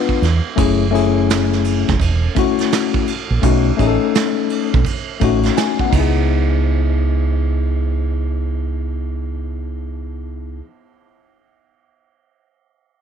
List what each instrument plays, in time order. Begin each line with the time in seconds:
Already playing: tine electric piano B3 D4 F4 B4
0.09 kick
0.22 fingered electric bass E2, snare, ride
0.56 fingered electric bass F#1, tine electric piano A3 C#4 E4 G#4, kick, ride
0.91 tine electric piano A3 C#4 E4 G#4, ride
1.30 snare, hi-hat pedal, ride
1.53 snare
1.64 ride
1.88 fingered electric bass F#1, kick, snare
2.00 fingered electric bass E1, kick, ride
2.35 tine electric piano A3 C#4 E4 F#4, kick, ride
2.58 snare, ride
2.72 snare, hi-hat pedal, ride
2.94 kick
3.07 ride
3.30 fingered electric bass A#1
3.42 fingered electric bass B1, tine electric piano A3 C#4 D#4 F#4, kick, ride
3.77 fingered electric bass A1, tine electric piano A3 C#4 D#4 G#4, kick, ride
3.87 tine electric piano A4
4.15 snare, hi-hat pedal, ride
4.50 ride
4.74 fingered electric bass B1, kick
4.85 kick, ride
5.20 fingered electric bass A1, tine electric piano A3 C#4 D#4 F#4, kick, ride
5.43 snare, ride
5.57 tine electric piano G#5, snare, hi-hat pedal, ride
5.79 tine electric piano F#5, kick
5.86 tine electric piano B3
5.90 fingered electric bass C#2, tine electric piano D#4, kick, crash
5.95 tine electric piano E4
6.00 tine electric piano G#4